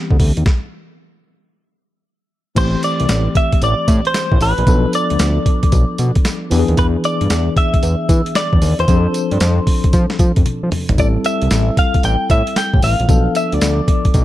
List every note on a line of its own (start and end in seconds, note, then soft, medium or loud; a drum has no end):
0.00 0.41 E3 medium
0.00 0.42 B3 medium
0.00 0.42 C4 medium
0.00 0.42 G4 medium
0.11 0.17 D2 loud
0.11 kick loud
0.20 0.32 D2 loud
0.20 kick medium
0.20 open hi-hat medium
0.37 0.44 D#2 medium
0.37 closed hi-hat medium
0.46 kick loud
0.46 snare loud
2.55 2.76 A1 loud
2.55 4.62 E3 medium
2.55 4.63 A3 medium
2.55 4.63 C4 medium
2.55 4.64 G4 medium
2.55 2.84 C5 loud
2.55 kick loud
2.55 closed hi-hat medium
2.55 crash loud
2.55 tambourine medium
2.83 3.36 D5 loud
2.83 closed hi-hat medium
2.83 tambourine medium
3.00 3.07 C2 medium
3.00 closed hi-hat medium
3.09 3.29 A1 loud
3.09 snare loud
3.09 closed hi-hat medium
3.09 tambourine medium
3.35 3.63 E5 loud
3.35 kick loud
3.35 closed hi-hat medium
3.52 kick medium
3.52 closed hi-hat medium
3.62 3.75 A1 loud
3.62 4.06 D5 loud
3.62 closed hi-hat medium
3.62 tambourine medium
3.88 4.01 A2 loud
3.88 kick loud
3.88 closed hi-hat medium
3.88 tambourine medium
4.05 4.42 C5 loud
4.05 closed hi-hat medium
4.14 snare loud
4.14 closed hi-hat medium
4.14 tambourine medium
4.32 4.38 A1 medium
4.32 kick loud
4.41 4.53 A1 loud
4.41 4.95 B4 medium
4.41 open hi-hat medium
4.41 tambourine medium
4.58 4.65 A#1 medium
4.58 closed hi-hat soft
4.66 4.86 B1 loud
4.66 6.47 F3 medium
4.66 6.47 B3 medium
4.66 6.48 D4 medium
4.66 6.48 A4 medium
4.66 kick loud
4.66 closed hi-hat medium
4.66 tambourine medium
4.93 6.48 D5 medium
4.93 closed hi-hat medium
4.93 tambourine medium
5.10 5.17 D2 medium
5.10 closed hi-hat medium
5.19 5.39 D2 loud
5.19 snare loud
5.19 closed hi-hat medium
5.19 tambourine loud
5.46 kick medium
5.46 closed hi-hat medium
5.63 kick medium
5.63 closed hi-hat medium
5.72 5.85 B1 loud
5.72 kick medium
5.72 closed hi-hat medium
5.72 tambourine medium
5.98 6.11 B2 loud
5.98 closed hi-hat medium
5.98 tambourine medium
6.15 kick loud
6.15 closed hi-hat medium
6.25 snare loud
6.25 closed hi-hat medium
6.25 tambourine medium
6.50 6.64 E2 loud
6.50 8.57 E3 medium
6.50 8.58 B3 medium
6.50 8.58 D4 medium
6.50 6.60 G4 medium
6.50 open hi-hat medium
6.50 tambourine medium
6.59 8.62 G#4 medium
6.68 6.75 D#2 loud
6.68 closed hi-hat soft
6.77 6.97 E2 loud
6.77 6.86 B4 loud
6.77 kick loud
6.77 closed hi-hat medium
6.77 tambourine medium
7.04 7.53 D5 loud
7.04 closed hi-hat medium
7.04 tambourine medium
7.21 7.28 G2 medium
7.21 closed hi-hat medium
7.30 7.50 E2 medium
7.30 snare loud
7.30 closed hi-hat medium
7.30 tambourine loud
7.56 8.36 E5 loud
7.56 kick loud
7.56 closed hi-hat medium
7.74 kick medium
7.74 closed hi-hat medium
7.83 7.96 E2 loud
7.83 closed hi-hat medium
7.83 tambourine medium
8.09 8.22 E3 loud
8.09 kick loud
8.09 closed hi-hat medium
8.09 tambourine medium
8.26 closed hi-hat medium
8.35 8.79 D5 medium
8.35 snare loud
8.35 closed hi-hat medium
8.35 tambourine medium
8.53 8.60 E2 medium
8.53 kick loud
8.62 8.75 D#2 loud
8.62 open hi-hat medium
8.62 tambourine medium
8.79 8.86 E2 medium
8.79 10.33 C5 medium
8.79 closed hi-hat medium
8.88 9.07 F2 loud
8.88 10.94 F3 medium
8.88 10.95 C4 medium
8.88 10.95 D4 medium
8.88 8.97 G#4 medium
8.88 kick loud
8.88 closed hi-hat medium
8.88 tambourine medium
8.96 10.99 A4 medium
9.14 closed hi-hat medium
9.14 tambourine medium
9.31 9.38 G2 medium
9.31 closed hi-hat medium
9.40 9.60 F2 loud
9.40 snare loud
9.40 closed hi-hat medium
9.40 tambourine medium
9.67 kick medium
9.67 open hi-hat medium
9.84 kick medium
9.84 closed hi-hat medium
9.93 10.06 F3 loud
9.93 kick loud
9.93 closed hi-hat medium
9.93 tambourine medium
10.10 snare medium
10.19 10.32 F3 loud
10.19 kick loud
10.19 closed hi-hat medium
10.19 tambourine medium
10.36 10.44 F2 medium
10.36 kick medium
10.36 closed hi-hat medium
10.46 closed hi-hat medium
10.46 high tom medium
10.63 10.70 F3 loud
10.72 mid tom loud
10.72 open hi-hat medium
10.89 10.96 G#1 medium
10.89 closed hi-hat medium
10.89 floor tom loud
10.98 11.18 A1 loud
10.98 13.05 G3 medium
10.98 13.05 C4 medium
10.98 13.05 E4 medium
10.98 13.06 A4 medium
10.98 11.07 D5 medium
10.98 kick loud
10.98 closed hi-hat medium
10.98 tambourine medium
11.24 11.78 E5 medium
11.24 closed hi-hat medium
11.24 tambourine medium
11.42 11.49 C2 medium
11.42 closed hi-hat medium
11.51 11.71 A1 loud
11.51 snare loud
11.51 closed hi-hat medium
11.51 tambourine medium
11.77 12.05 F5 medium
11.77 kick medium
11.77 closed hi-hat medium
11.94 kick medium
11.94 closed hi-hat medium
12.03 12.17 A1 loud
12.03 12.30 G5 loud
12.03 closed hi-hat medium
12.03 tambourine medium
12.30 12.43 A2 loud
12.30 12.57 E5 loud
12.30 kick loud
12.30 closed hi-hat medium
12.30 tambourine medium
12.47 closed hi-hat medium
12.56 12.83 G5 loud
12.56 snare loud
12.56 closed hi-hat medium
12.56 tambourine medium
12.74 12.80 A1 medium
12.74 kick loud
12.82 12.96 A1 loud
12.82 13.36 F5 loud
12.82 open hi-hat medium
12.82 tambourine medium
13.00 13.07 A#1 medium
13.00 closed hi-hat soft
13.08 13.28 B1 loud
13.08 14.25 F3 medium
13.08 14.25 B3 medium
13.08 14.25 D4 medium
13.08 14.25 A4 medium
13.08 kick loud
13.08 closed hi-hat medium
13.08 tambourine medium
13.35 13.54 E5 medium
13.35 closed hi-hat medium
13.35 tambourine medium
13.52 13.60 D2 medium
13.52 14.25 D5 medium
13.52 closed hi-hat medium
13.61 13.81 D2 medium
13.61 snare loud
13.61 closed hi-hat medium
13.61 tambourine loud
13.88 kick loud
13.88 closed hi-hat medium
14.05 kick medium
14.05 closed hi-hat medium
14.14 14.25 B1 loud
14.14 kick medium
14.14 closed hi-hat medium
14.14 tambourine medium